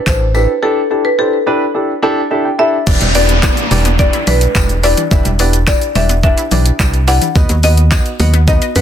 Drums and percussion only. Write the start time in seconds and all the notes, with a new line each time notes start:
0.07 kick, clap, tambourine
0.35 tambourine
2.87 kick, crash, tambourine, shaker
3.01 closed hi-hat, shaker
3.15 open hi-hat, tambourine, shaker
3.29 closed hi-hat, shaker
3.43 kick, clap, tambourine, shaker
3.57 closed hi-hat, shaker
3.71 open hi-hat, tambourine, shaker
3.85 closed hi-hat, shaker
3.99 kick, tambourine, shaker
4.13 closed hi-hat, shaker
4.27 open hi-hat, tambourine, shaker
4.41 closed hi-hat, shaker
4.55 kick, clap, tambourine, shaker
4.69 closed hi-hat, shaker
4.83 open hi-hat, tambourine, shaker
4.97 closed hi-hat, shaker
5.11 kick, tambourine, shaker
5.25 closed hi-hat, shaker
5.39 open hi-hat, tambourine, shaker
5.53 closed hi-hat, shaker
5.67 kick, clap, tambourine, shaker
5.81 closed hi-hat, shaker
5.95 open hi-hat, tambourine, shaker
6.09 closed hi-hat, shaker
6.23 kick, shaker
6.38 closed hi-hat, shaker
6.51 open hi-hat, shaker
6.66 closed hi-hat, shaker
6.80 kick, clap, tambourine, shaker
6.94 closed hi-hat, shaker
7.08 open hi-hat, tambourine, shaker
7.22 closed hi-hat, shaker
7.36 kick, tambourine, shaker
7.49 closed hi-hat, shaker
7.63 open hi-hat, tambourine, shaker
7.77 closed hi-hat, shaker
7.91 kick, clap, tambourine, shaker
8.06 closed hi-hat, shaker
8.20 open hi-hat, tambourine, shaker
8.34 closed hi-hat, shaker
8.48 kick, tambourine, shaker
8.62 closed hi-hat, shaker
8.76 open hi-hat, tambourine, shaker